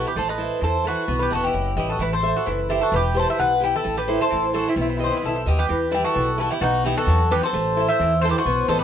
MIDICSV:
0, 0, Header, 1, 5, 480
1, 0, Start_track
1, 0, Key_signature, 1, "minor"
1, 0, Tempo, 459770
1, 176, Time_signature, 2, 2, 24, 8
1, 9227, End_track
2, 0, Start_track
2, 0, Title_t, "Bouzouki"
2, 0, Program_c, 0, 25
2, 72, Note_on_c, 0, 71, 77
2, 174, Note_off_c, 0, 71, 0
2, 179, Note_on_c, 0, 72, 94
2, 300, Note_off_c, 0, 72, 0
2, 304, Note_on_c, 0, 75, 94
2, 660, Note_off_c, 0, 75, 0
2, 665, Note_on_c, 0, 72, 82
2, 904, Note_off_c, 0, 72, 0
2, 908, Note_on_c, 0, 71, 84
2, 1234, Note_off_c, 0, 71, 0
2, 1246, Note_on_c, 0, 71, 90
2, 1362, Note_off_c, 0, 71, 0
2, 1383, Note_on_c, 0, 69, 85
2, 1491, Note_off_c, 0, 69, 0
2, 1500, Note_on_c, 0, 67, 75
2, 1833, Note_off_c, 0, 67, 0
2, 1846, Note_on_c, 0, 67, 74
2, 1962, Note_off_c, 0, 67, 0
2, 1977, Note_on_c, 0, 69, 72
2, 2088, Note_off_c, 0, 69, 0
2, 2113, Note_on_c, 0, 71, 96
2, 2217, Note_off_c, 0, 71, 0
2, 2224, Note_on_c, 0, 72, 86
2, 2443, Note_off_c, 0, 72, 0
2, 2478, Note_on_c, 0, 69, 68
2, 2570, Note_on_c, 0, 71, 76
2, 2580, Note_off_c, 0, 69, 0
2, 2796, Note_off_c, 0, 71, 0
2, 2818, Note_on_c, 0, 67, 81
2, 2929, Note_off_c, 0, 67, 0
2, 2935, Note_on_c, 0, 69, 77
2, 3060, Note_off_c, 0, 69, 0
2, 3067, Note_on_c, 0, 71, 97
2, 3300, Note_off_c, 0, 71, 0
2, 3304, Note_on_c, 0, 72, 84
2, 3424, Note_off_c, 0, 72, 0
2, 3445, Note_on_c, 0, 76, 87
2, 3540, Note_off_c, 0, 76, 0
2, 3544, Note_on_c, 0, 78, 96
2, 3765, Note_off_c, 0, 78, 0
2, 3802, Note_on_c, 0, 67, 87
2, 3913, Note_off_c, 0, 67, 0
2, 3922, Note_on_c, 0, 69, 85
2, 4134, Note_off_c, 0, 69, 0
2, 4154, Note_on_c, 0, 71, 94
2, 4393, Note_off_c, 0, 71, 0
2, 4404, Note_on_c, 0, 72, 92
2, 4727, Note_off_c, 0, 72, 0
2, 4741, Note_on_c, 0, 69, 77
2, 4852, Note_off_c, 0, 69, 0
2, 4898, Note_on_c, 0, 64, 68
2, 4953, Note_off_c, 0, 64, 0
2, 4970, Note_on_c, 0, 64, 45
2, 5012, Note_off_c, 0, 64, 0
2, 5024, Note_on_c, 0, 64, 60
2, 5093, Note_off_c, 0, 64, 0
2, 5110, Note_on_c, 0, 64, 50
2, 5176, Note_off_c, 0, 64, 0
2, 5189, Note_on_c, 0, 64, 59
2, 5255, Note_off_c, 0, 64, 0
2, 5258, Note_on_c, 0, 72, 78
2, 5278, Note_on_c, 0, 64, 43
2, 5327, Note_off_c, 0, 64, 0
2, 5340, Note_on_c, 0, 64, 53
2, 5361, Note_off_c, 0, 72, 0
2, 5393, Note_on_c, 0, 71, 81
2, 5409, Note_off_c, 0, 64, 0
2, 5440, Note_on_c, 0, 64, 40
2, 5480, Note_off_c, 0, 71, 0
2, 5486, Note_on_c, 0, 69, 78
2, 5493, Note_off_c, 0, 64, 0
2, 5505, Note_on_c, 0, 64, 55
2, 5570, Note_off_c, 0, 64, 0
2, 5589, Note_on_c, 0, 64, 51
2, 5652, Note_off_c, 0, 64, 0
2, 5697, Note_off_c, 0, 69, 0
2, 5725, Note_on_c, 0, 67, 75
2, 5832, Note_on_c, 0, 71, 79
2, 5835, Note_off_c, 0, 67, 0
2, 6161, Note_off_c, 0, 71, 0
2, 6206, Note_on_c, 0, 67, 81
2, 6310, Note_off_c, 0, 67, 0
2, 6314, Note_on_c, 0, 69, 93
2, 6669, Note_off_c, 0, 69, 0
2, 6682, Note_on_c, 0, 69, 83
2, 6783, Note_off_c, 0, 69, 0
2, 6793, Note_on_c, 0, 67, 89
2, 6903, Note_off_c, 0, 67, 0
2, 6907, Note_on_c, 0, 66, 100
2, 7150, Note_off_c, 0, 66, 0
2, 7158, Note_on_c, 0, 67, 87
2, 7272, Note_off_c, 0, 67, 0
2, 7283, Note_on_c, 0, 69, 93
2, 7641, Note_off_c, 0, 69, 0
2, 7642, Note_on_c, 0, 71, 94
2, 7753, Note_off_c, 0, 71, 0
2, 7759, Note_on_c, 0, 72, 89
2, 8227, Note_off_c, 0, 72, 0
2, 8232, Note_on_c, 0, 76, 99
2, 8572, Note_off_c, 0, 76, 0
2, 8576, Note_on_c, 0, 72, 100
2, 8652, Note_off_c, 0, 72, 0
2, 8657, Note_on_c, 0, 71, 82
2, 8727, Note_off_c, 0, 71, 0
2, 8750, Note_on_c, 0, 72, 96
2, 9052, Note_off_c, 0, 72, 0
2, 9065, Note_on_c, 0, 72, 95
2, 9172, Note_off_c, 0, 72, 0
2, 9177, Note_on_c, 0, 71, 80
2, 9227, Note_off_c, 0, 71, 0
2, 9227, End_track
3, 0, Start_track
3, 0, Title_t, "Bouzouki"
3, 0, Program_c, 1, 25
3, 82, Note_on_c, 1, 67, 77
3, 181, Note_off_c, 1, 67, 0
3, 194, Note_on_c, 1, 69, 87
3, 297, Note_off_c, 1, 69, 0
3, 314, Note_on_c, 1, 71, 72
3, 640, Note_off_c, 1, 71, 0
3, 663, Note_on_c, 1, 69, 64
3, 883, Note_off_c, 1, 69, 0
3, 922, Note_on_c, 1, 66, 76
3, 1245, Note_off_c, 1, 66, 0
3, 1279, Note_on_c, 1, 67, 69
3, 1380, Note_off_c, 1, 67, 0
3, 1411, Note_on_c, 1, 66, 70
3, 1506, Note_off_c, 1, 66, 0
3, 1532, Note_on_c, 1, 64, 68
3, 1850, Note_off_c, 1, 64, 0
3, 1874, Note_on_c, 1, 64, 76
3, 1977, Note_off_c, 1, 64, 0
3, 1999, Note_on_c, 1, 66, 62
3, 2099, Note_on_c, 1, 64, 84
3, 2100, Note_off_c, 1, 66, 0
3, 2209, Note_off_c, 1, 64, 0
3, 2223, Note_on_c, 1, 69, 64
3, 2443, Note_off_c, 1, 69, 0
3, 2467, Note_on_c, 1, 66, 64
3, 2574, Note_off_c, 1, 66, 0
3, 2590, Note_on_c, 1, 64, 72
3, 2807, Note_off_c, 1, 64, 0
3, 2830, Note_on_c, 1, 64, 70
3, 2936, Note_off_c, 1, 64, 0
3, 2955, Note_on_c, 1, 66, 70
3, 3058, Note_off_c, 1, 66, 0
3, 3088, Note_on_c, 1, 67, 93
3, 3297, Note_off_c, 1, 67, 0
3, 3335, Note_on_c, 1, 69, 79
3, 3429, Note_off_c, 1, 69, 0
3, 3443, Note_on_c, 1, 72, 73
3, 3542, Note_off_c, 1, 72, 0
3, 3546, Note_on_c, 1, 71, 77
3, 3765, Note_off_c, 1, 71, 0
3, 3794, Note_on_c, 1, 64, 80
3, 3898, Note_off_c, 1, 64, 0
3, 3923, Note_on_c, 1, 64, 67
3, 4135, Note_off_c, 1, 64, 0
3, 4148, Note_on_c, 1, 67, 71
3, 4367, Note_off_c, 1, 67, 0
3, 4397, Note_on_c, 1, 69, 75
3, 4723, Note_off_c, 1, 69, 0
3, 4760, Note_on_c, 1, 66, 70
3, 4862, Note_off_c, 1, 66, 0
3, 4884, Note_on_c, 1, 60, 65
3, 4945, Note_off_c, 1, 60, 0
3, 4971, Note_on_c, 1, 60, 42
3, 5022, Note_off_c, 1, 60, 0
3, 5034, Note_on_c, 1, 60, 50
3, 5095, Note_off_c, 1, 60, 0
3, 5108, Note_on_c, 1, 60, 41
3, 5175, Note_off_c, 1, 60, 0
3, 5202, Note_on_c, 1, 60, 39
3, 5262, Note_off_c, 1, 60, 0
3, 5278, Note_on_c, 1, 60, 39
3, 5314, Note_off_c, 1, 60, 0
3, 5326, Note_on_c, 1, 60, 43
3, 5401, Note_off_c, 1, 60, 0
3, 5426, Note_on_c, 1, 60, 35
3, 5491, Note_off_c, 1, 60, 0
3, 5513, Note_on_c, 1, 60, 40
3, 5575, Note_off_c, 1, 60, 0
3, 5587, Note_on_c, 1, 60, 40
3, 5651, Note_off_c, 1, 60, 0
3, 5724, Note_on_c, 1, 64, 66
3, 5824, Note_off_c, 1, 64, 0
3, 5839, Note_on_c, 1, 67, 75
3, 6165, Note_off_c, 1, 67, 0
3, 6181, Note_on_c, 1, 64, 78
3, 6292, Note_off_c, 1, 64, 0
3, 6310, Note_on_c, 1, 66, 82
3, 6640, Note_off_c, 1, 66, 0
3, 6690, Note_on_c, 1, 66, 79
3, 6787, Note_off_c, 1, 66, 0
3, 6806, Note_on_c, 1, 64, 71
3, 6905, Note_off_c, 1, 64, 0
3, 6925, Note_on_c, 1, 63, 85
3, 7136, Note_off_c, 1, 63, 0
3, 7164, Note_on_c, 1, 64, 81
3, 7264, Note_off_c, 1, 64, 0
3, 7279, Note_on_c, 1, 66, 71
3, 7604, Note_off_c, 1, 66, 0
3, 7637, Note_on_c, 1, 67, 83
3, 7740, Note_off_c, 1, 67, 0
3, 7782, Note_on_c, 1, 69, 89
3, 8208, Note_off_c, 1, 69, 0
3, 8243, Note_on_c, 1, 72, 78
3, 8566, Note_off_c, 1, 72, 0
3, 8614, Note_on_c, 1, 69, 86
3, 8665, Note_off_c, 1, 69, 0
3, 8671, Note_on_c, 1, 67, 69
3, 8729, Note_off_c, 1, 67, 0
3, 8751, Note_on_c, 1, 66, 85
3, 9048, Note_off_c, 1, 66, 0
3, 9073, Note_on_c, 1, 69, 80
3, 9177, Note_off_c, 1, 69, 0
3, 9190, Note_on_c, 1, 67, 67
3, 9227, Note_off_c, 1, 67, 0
3, 9227, End_track
4, 0, Start_track
4, 0, Title_t, "Steel-string acoustic guitar"
4, 0, Program_c, 2, 25
4, 0, Note_on_c, 2, 47, 60
4, 0, Note_on_c, 2, 64, 48
4, 0, Note_on_c, 2, 67, 37
4, 0, Note_on_c, 2, 71, 46
4, 119, Note_off_c, 2, 64, 0
4, 121, Note_off_c, 2, 67, 0
4, 123, Note_off_c, 2, 71, 0
4, 160, Note_off_c, 2, 47, 0
4, 169, Note_on_c, 2, 57, 66
4, 395, Note_on_c, 2, 64, 47
4, 401, Note_on_c, 2, 69, 40
4, 404, Note_on_c, 2, 72, 58
4, 635, Note_on_c, 2, 52, 58
4, 638, Note_off_c, 2, 57, 0
4, 788, Note_off_c, 2, 64, 0
4, 789, Note_off_c, 2, 69, 0
4, 793, Note_off_c, 2, 72, 0
4, 879, Note_on_c, 2, 64, 46
4, 885, Note_on_c, 2, 72, 50
4, 889, Note_on_c, 2, 69, 40
4, 1079, Note_off_c, 2, 64, 0
4, 1081, Note_off_c, 2, 69, 0
4, 1082, Note_off_c, 2, 72, 0
4, 1111, Note_off_c, 2, 52, 0
4, 1127, Note_on_c, 2, 59, 67
4, 1363, Note_on_c, 2, 78, 53
4, 1370, Note_on_c, 2, 71, 45
4, 1378, Note_on_c, 2, 75, 55
4, 1597, Note_off_c, 2, 59, 0
4, 1604, Note_on_c, 2, 54, 60
4, 1752, Note_off_c, 2, 78, 0
4, 1757, Note_off_c, 2, 71, 0
4, 1761, Note_off_c, 2, 75, 0
4, 1845, Note_on_c, 2, 66, 50
4, 1851, Note_on_c, 2, 71, 39
4, 1856, Note_on_c, 2, 75, 50
4, 2041, Note_off_c, 2, 66, 0
4, 2045, Note_off_c, 2, 71, 0
4, 2048, Note_off_c, 2, 75, 0
4, 2075, Note_off_c, 2, 54, 0
4, 2087, Note_on_c, 2, 57, 68
4, 2320, Note_on_c, 2, 69, 53
4, 2329, Note_on_c, 2, 72, 39
4, 2329, Note_on_c, 2, 76, 52
4, 2557, Note_off_c, 2, 57, 0
4, 2575, Note_on_c, 2, 52, 57
4, 2712, Note_off_c, 2, 69, 0
4, 2714, Note_off_c, 2, 72, 0
4, 2716, Note_off_c, 2, 76, 0
4, 2806, Note_on_c, 2, 69, 41
4, 2815, Note_on_c, 2, 72, 37
4, 2817, Note_on_c, 2, 76, 54
4, 3004, Note_off_c, 2, 69, 0
4, 3005, Note_off_c, 2, 72, 0
4, 3009, Note_off_c, 2, 76, 0
4, 3037, Note_off_c, 2, 52, 0
4, 3049, Note_on_c, 2, 52, 66
4, 3282, Note_on_c, 2, 67, 48
4, 3284, Note_on_c, 2, 64, 42
4, 3289, Note_on_c, 2, 71, 60
4, 3519, Note_off_c, 2, 52, 0
4, 3530, Note_on_c, 2, 47, 64
4, 3672, Note_off_c, 2, 64, 0
4, 3674, Note_off_c, 2, 67, 0
4, 3676, Note_off_c, 2, 71, 0
4, 3756, Note_on_c, 2, 64, 42
4, 3763, Note_on_c, 2, 67, 43
4, 3772, Note_on_c, 2, 71, 44
4, 3957, Note_off_c, 2, 64, 0
4, 3961, Note_off_c, 2, 67, 0
4, 3963, Note_off_c, 2, 71, 0
4, 3999, Note_off_c, 2, 47, 0
4, 4009, Note_on_c, 2, 57, 66
4, 4258, Note_on_c, 2, 72, 51
4, 4263, Note_on_c, 2, 69, 44
4, 4268, Note_on_c, 2, 64, 47
4, 4479, Note_off_c, 2, 57, 0
4, 4491, Note_on_c, 2, 52, 65
4, 4643, Note_off_c, 2, 64, 0
4, 4644, Note_off_c, 2, 69, 0
4, 4645, Note_off_c, 2, 72, 0
4, 4732, Note_on_c, 2, 64, 46
4, 4737, Note_on_c, 2, 69, 45
4, 4742, Note_on_c, 2, 72, 57
4, 4927, Note_off_c, 2, 64, 0
4, 4930, Note_off_c, 2, 69, 0
4, 4933, Note_off_c, 2, 72, 0
4, 4961, Note_off_c, 2, 52, 0
4, 4979, Note_on_c, 2, 59, 63
4, 5208, Note_on_c, 2, 66, 48
4, 5212, Note_on_c, 2, 71, 48
4, 5220, Note_on_c, 2, 75, 52
4, 5445, Note_off_c, 2, 59, 0
4, 5458, Note_on_c, 2, 54, 57
4, 5597, Note_off_c, 2, 66, 0
4, 5601, Note_off_c, 2, 71, 0
4, 5602, Note_off_c, 2, 75, 0
4, 5699, Note_on_c, 2, 66, 45
4, 5709, Note_on_c, 2, 71, 39
4, 5711, Note_on_c, 2, 75, 46
4, 5893, Note_off_c, 2, 66, 0
4, 5895, Note_off_c, 2, 71, 0
4, 5898, Note_off_c, 2, 75, 0
4, 5924, Note_off_c, 2, 54, 0
4, 5939, Note_on_c, 2, 52, 74
4, 6169, Note_on_c, 2, 55, 44
4, 6173, Note_on_c, 2, 64, 45
4, 6176, Note_on_c, 2, 71, 61
4, 6405, Note_off_c, 2, 52, 0
4, 6416, Note_on_c, 2, 47, 60
4, 6557, Note_off_c, 2, 55, 0
4, 6557, Note_off_c, 2, 64, 0
4, 6561, Note_off_c, 2, 71, 0
4, 6655, Note_on_c, 2, 64, 46
4, 6661, Note_on_c, 2, 71, 57
4, 6665, Note_on_c, 2, 67, 44
4, 6849, Note_off_c, 2, 64, 0
4, 6851, Note_off_c, 2, 67, 0
4, 6852, Note_off_c, 2, 71, 0
4, 6883, Note_off_c, 2, 47, 0
4, 6895, Note_on_c, 2, 47, 64
4, 7140, Note_on_c, 2, 59, 46
4, 7148, Note_on_c, 2, 63, 45
4, 7148, Note_on_c, 2, 66, 65
4, 7362, Note_off_c, 2, 47, 0
4, 7393, Note_on_c, 2, 54, 65
4, 7524, Note_off_c, 2, 59, 0
4, 7525, Note_off_c, 2, 63, 0
4, 7528, Note_off_c, 2, 66, 0
4, 7625, Note_on_c, 2, 59, 54
4, 7632, Note_on_c, 2, 63, 37
4, 7636, Note_on_c, 2, 66, 58
4, 7816, Note_off_c, 2, 59, 0
4, 7816, Note_off_c, 2, 63, 0
4, 7821, Note_off_c, 2, 66, 0
4, 7851, Note_off_c, 2, 54, 0
4, 7870, Note_on_c, 2, 57, 68
4, 8108, Note_on_c, 2, 64, 55
4, 8115, Note_on_c, 2, 72, 61
4, 8117, Note_on_c, 2, 69, 41
4, 8329, Note_off_c, 2, 57, 0
4, 8361, Note_on_c, 2, 52, 62
4, 8489, Note_off_c, 2, 64, 0
4, 8489, Note_off_c, 2, 69, 0
4, 8491, Note_off_c, 2, 72, 0
4, 8588, Note_on_c, 2, 64, 48
4, 8590, Note_on_c, 2, 69, 45
4, 8593, Note_on_c, 2, 72, 53
4, 8774, Note_off_c, 2, 69, 0
4, 8776, Note_off_c, 2, 64, 0
4, 8779, Note_off_c, 2, 72, 0
4, 8815, Note_off_c, 2, 52, 0
4, 8832, Note_on_c, 2, 59, 74
4, 9064, Note_on_c, 2, 66, 55
4, 9069, Note_on_c, 2, 71, 41
4, 9076, Note_on_c, 2, 75, 57
4, 9227, Note_off_c, 2, 59, 0
4, 9227, Note_off_c, 2, 66, 0
4, 9227, Note_off_c, 2, 71, 0
4, 9227, Note_off_c, 2, 75, 0
4, 9227, End_track
5, 0, Start_track
5, 0, Title_t, "Upright bass"
5, 0, Program_c, 3, 32
5, 164, Note_on_c, 3, 33, 88
5, 504, Note_off_c, 3, 33, 0
5, 644, Note_on_c, 3, 40, 78
5, 984, Note_off_c, 3, 40, 0
5, 1128, Note_on_c, 3, 35, 92
5, 1298, Note_off_c, 3, 35, 0
5, 1372, Note_on_c, 3, 27, 69
5, 1590, Note_off_c, 3, 27, 0
5, 1607, Note_on_c, 3, 30, 68
5, 1827, Note_off_c, 3, 30, 0
5, 1839, Note_on_c, 3, 33, 83
5, 2063, Note_off_c, 3, 33, 0
5, 2077, Note_on_c, 3, 33, 89
5, 2420, Note_off_c, 3, 33, 0
5, 2579, Note_on_c, 3, 30, 72
5, 2914, Note_off_c, 3, 30, 0
5, 3046, Note_on_c, 3, 28, 97
5, 3386, Note_off_c, 3, 28, 0
5, 3541, Note_on_c, 3, 35, 71
5, 3876, Note_off_c, 3, 35, 0
5, 4018, Note_on_c, 3, 33, 90
5, 4355, Note_off_c, 3, 33, 0
5, 4508, Note_on_c, 3, 33, 76
5, 4841, Note_off_c, 3, 33, 0
5, 4970, Note_on_c, 3, 35, 95
5, 5309, Note_off_c, 3, 35, 0
5, 5468, Note_on_c, 3, 35, 69
5, 5680, Note_off_c, 3, 35, 0
5, 5701, Note_on_c, 3, 39, 83
5, 5917, Note_off_c, 3, 39, 0
5, 5950, Note_on_c, 3, 40, 82
5, 6282, Note_off_c, 3, 40, 0
5, 6427, Note_on_c, 3, 35, 86
5, 6760, Note_off_c, 3, 35, 0
5, 6899, Note_on_c, 3, 35, 90
5, 7235, Note_off_c, 3, 35, 0
5, 7377, Note_on_c, 3, 40, 93
5, 7713, Note_off_c, 3, 40, 0
5, 7863, Note_on_c, 3, 33, 90
5, 8197, Note_off_c, 3, 33, 0
5, 8347, Note_on_c, 3, 40, 99
5, 8679, Note_off_c, 3, 40, 0
5, 8825, Note_on_c, 3, 35, 83
5, 8990, Note_off_c, 3, 35, 0
5, 9066, Note_on_c, 3, 33, 86
5, 9227, Note_off_c, 3, 33, 0
5, 9227, End_track
0, 0, End_of_file